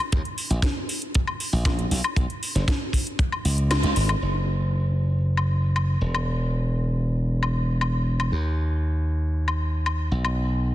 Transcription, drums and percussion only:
0.12 kick, closed hi-hat
0.25 closed hi-hat
0.38 open hi-hat
0.51 closed hi-hat
0.62 kick, snare, closed hi-hat
0.89 open hi-hat
1.02 closed hi-hat
1.15 kick, closed hi-hat
1.27 high woodblock
1.40 open hi-hat
1.65 kick, snare, closed hi-hat, high woodblock
1.79 closed hi-hat
1.91 open hi-hat
2.04 closed hi-hat, high woodblock
2.16 kick, closed hi-hat
2.30 closed hi-hat
2.43 open hi-hat
2.56 snare, closed hi-hat
2.68 kick, snare, closed hi-hat
2.93 kick, open hi-hat
3.07 closed hi-hat
3.19 kick, closed hi-hat
3.32 high woodblock
3.45 open hi-hat
3.58 closed hi-hat
3.71 snare, closed hi-hat, high woodblock
3.83 closed hi-hat
3.96 open hi-hat
4.09 high woodblock
5.37 high woodblock
5.76 high woodblock
6.15 high woodblock
7.43 high woodblock
7.81 high woodblock
8.20 high woodblock
9.48 high woodblock
9.86 high woodblock
10.25 high woodblock

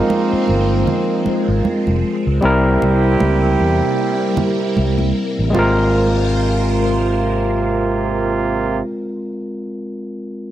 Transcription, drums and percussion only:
0.10 high conga
0.48 muted conga
0.87 low conga
1.26 muted conga
1.65 high conga
1.87 high conga
2.42 muted conga
2.82 muted conga
3.20 high conga
3.59 muted conga
4.37 muted conga, low conga
4.77 high conga
4.99 high conga
5.55 muted conga

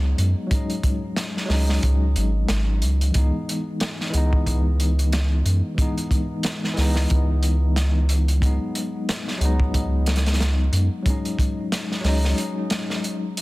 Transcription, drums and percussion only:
0.18 closed hi-hat
0.51 kick, closed hi-hat
0.70 closed hi-hat
0.83 kick, closed hi-hat
1.16 snare, closed hi-hat
1.37 snare
1.50 snare, open hi-hat
1.69 snare
1.83 kick, closed hi-hat
2.16 closed hi-hat
2.49 snare, closed hi-hat
2.82 closed hi-hat
3.01 closed hi-hat
3.14 kick, closed hi-hat
3.49 closed hi-hat
3.80 snare, closed hi-hat
4.01 snare
4.14 closed hi-hat
4.33 kick
4.46 kick, closed hi-hat
4.80 closed hi-hat
4.99 closed hi-hat
5.12 snare, closed hi-hat
5.46 closed hi-hat
5.78 kick, closed hi-hat
5.98 closed hi-hat
6.11 kick, closed hi-hat
6.43 snare, closed hi-hat
6.64 snare
6.77 snare, open hi-hat
6.96 snare
7.10 kick, closed hi-hat
7.43 closed hi-hat
7.76 snare, closed hi-hat
8.09 closed hi-hat
8.28 closed hi-hat
8.42 kick, closed hi-hat
8.75 closed hi-hat
9.09 snare, closed hi-hat
9.28 snare
9.41 closed hi-hat
9.60 kick
9.74 kick, closed hi-hat
10.06 snare, closed hi-hat
10.16 snare, closed hi-hat
10.26 snare, closed hi-hat
10.34 snare, closed hi-hat
10.40 snare, closed hi-hat
10.73 closed hi-hat
11.06 kick, closed hi-hat
11.25 closed hi-hat
11.39 kick, closed hi-hat
11.72 snare, closed hi-hat
11.92 snare
12.04 snare, open hi-hat
12.25 snare
12.38 closed hi-hat
12.70 snare, closed hi-hat
12.90 snare
13.04 closed hi-hat
13.37 closed hi-hat

